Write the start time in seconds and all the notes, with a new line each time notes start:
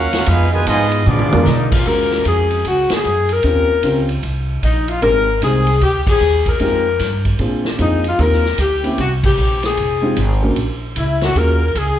Already playing: D#2 A#3 C#4 F#4 A#4 F5 F#5
0.13 snare, ride
0.25 F2 G#3 B3 D#4 F4 G#4 B4 F5, kick, ride
0.51 B2 D#3 G#3 F4 B4 D#5 G#5
0.65 G#2 F3 G#3 B3 D#4 F4 G#4 D#5, kick, hi-hat pedal, ride
0.92 ride
1.06 A#2 F3 G#3 B3 D4 F4 G#4 D5, mid tom
1.19 G#2, mid tom
1.31 F2 G#3 B3 D4 F4 A#4, mid tom
1.45 B2 D#4, snare, hi-hat pedal
1.72 F4, kick, crash
1.85 D#2 G#3 C#4 F4 F#4 A#4
2.11 snare
2.25 F2 G#4, kick, hi-hat pedal, ride
2.51 ride
2.65 C#2 F#4, kick, ride
2.90 muted upright bass stroke, snare, ride
2.94 G#4
3.04 F#2, hi-hat pedal
3.29 A#4, ride
3.43 D#2 C4 C#4 F4 G4 A#4, kick, ride
3.83 C#2 C4 C#4 F4 G4 A#4, kick, hi-hat pedal, ride
4.09 ride
4.23 C2, kick, ride
4.63 A#1 D#4, kick, hi-hat pedal, ride
4.88 F4, ride
5.02 G#1 G#3 C4 D#4 G4 A#4, kick, ride
5.42 C2 G#3 C4 D#4 G4 G#4 C5, kick, hi-hat pedal, ride
5.67 ride
5.81 D2 G4, kick, ride
6.07 G#4, kick, crash
6.21 D#2, hi-hat pedal
6.46 A#4, kick, ride
6.59 F2 G#3 C4 D#4 F4 G4, kick, ride
6.99 G2, kick, snare, hi-hat pedal, ride
7.25 kick, ride
7.39 A#2 A#3 C4 D4 F4 G#4, kick, ride
7.65 snare
7.78 F2 A#3 C4 D4 D#4 F4 G#4, kick, hi-hat pedal, ride
8.04 ride
8.08 F4
8.18 D#2 A#3 C4 D#4 F4 G4 A#4, kick, ride
8.32 snare
8.46 snare
8.58 D2 G4, kick, hi-hat pedal, ride
8.83 A#3 C4 C#4 E4 G4, ride
8.98 C2 F#4, kick, ride
9.24 G4, kick, crash
9.37 A#1, hi-hat pedal
9.63 G#4, snare, ride
9.77 F1, kick, ride
10.01 G#3 C4 D#4 F4 G4
10.16 G#1, kick, hi-hat pedal, ride
10.42 A#3 C#4 D4 F#4 A#4
10.56 A#1, kick, ride
10.96 C#2 E4, kick, hi-hat pedal, ride
11.21 F#4, snare, ride
11.34 D#2 A#3 C#4 F4 F#4 G#4 A#4, kick, ride
11.75 C#2 G#4, kick, hi-hat pedal, ride